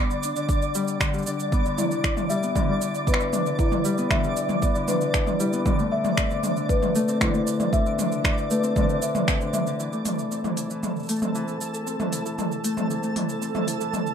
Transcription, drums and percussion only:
0.10 cabasa
0.23 cabasa
0.36 cabasa
0.49 kick, cabasa
0.62 cabasa
0.75 cabasa
0.88 cabasa
1.01 finger snap, kick, cabasa
1.14 cabasa
1.18 cabasa
1.22 cabasa
1.27 cabasa
1.40 cabasa
1.52 kick, cabasa
1.66 cabasa
1.78 mid tom, cabasa
1.91 cabasa
2.04 finger snap, kick, cabasa
2.17 mid tom, cabasa
2.30 cabasa
2.43 cabasa
2.56 kick, mid tom, cabasa
2.82 cabasa
2.95 cabasa
3.07 kick, cabasa
3.14 finger snap
3.20 cabasa
3.33 mid tom, cabasa
3.46 cabasa
3.59 kick, cabasa
3.72 mid tom, cabasa
3.85 cabasa
3.98 cabasa
4.11 finger snap, kick, mid tom, cabasa
4.24 cabasa
4.37 cabasa
4.49 mid tom, cabasa
4.62 kick, cabasa
4.75 cabasa
4.88 mid tom, cabasa
5.01 cabasa
5.14 finger snap, kick, cabasa
5.27 mid tom, cabasa
5.40 cabasa
5.53 cabasa
5.66 kick, mid tom, cabasa
5.79 cabasa
6.05 mid tom, cabasa
6.17 finger snap, kick, cabasa
6.31 cabasa
6.44 mid tom, cabasa
6.57 cabasa
6.69 kick, cabasa
6.82 mid tom, cabasa
6.95 cabasa
7.08 cabasa
7.21 finger snap, kick, mid tom, cabasa
7.34 cabasa
7.47 cabasa
7.60 mid tom, cabasa
7.73 kick, cabasa
7.86 cabasa
7.99 mid tom, cabasa
8.12 cabasa
8.24 finger snap, kick, cabasa
8.38 cabasa
8.51 cabasa
8.64 cabasa
8.76 kick, mid tom, cabasa
8.89 cabasa
9.02 cabasa
9.15 mid tom, cabasa
9.28 finger snap, kick, cabasa
9.41 cabasa
9.54 mid tom, cabasa
9.67 cabasa
9.80 cabasa
9.93 cabasa
10.05 mid tom, open hi-hat, cabasa
10.19 cabasa
10.32 cabasa
10.44 mid tom, cabasa
10.57 open hi-hat, cabasa
10.70 cabasa
10.83 mid tom, cabasa
10.96 cabasa
10.99 cabasa
11.03 cabasa
11.06 open hi-hat, cabasa
11.09 cabasa
11.13 cabasa
11.16 cabasa
11.19 mid tom, cabasa
11.22 cabasa
11.35 cabasa
11.48 cabasa
11.61 cabasa
11.74 cabasa
11.87 cabasa
12.00 mid tom, cabasa
12.13 open hi-hat, cabasa
12.26 cabasa
12.39 mid tom, cabasa
12.52 cabasa
12.64 open hi-hat, cabasa
12.77 mid tom, cabasa
12.90 cabasa
13.03 cabasa
13.16 mid tom, open hi-hat
13.29 cabasa
13.42 cabasa
13.55 mid tom, cabasa
13.68 open hi-hat, cabasa
13.81 cabasa
13.94 mid tom, cabasa
14.07 cabasa

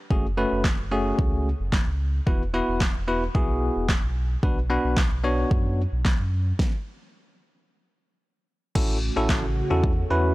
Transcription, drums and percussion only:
0.10 kick
0.64 kick, snare, clap
1.19 kick
1.73 kick, snare, clap
2.27 kick
2.81 kick, snare, clap
3.35 kick
3.89 kick, snare, clap
4.43 kick
4.97 kick, snare, clap
5.51 kick
6.05 kick, snare, clap
6.59 kick, snare
8.75 kick, crash
9.29 kick, snare, clap
9.84 kick

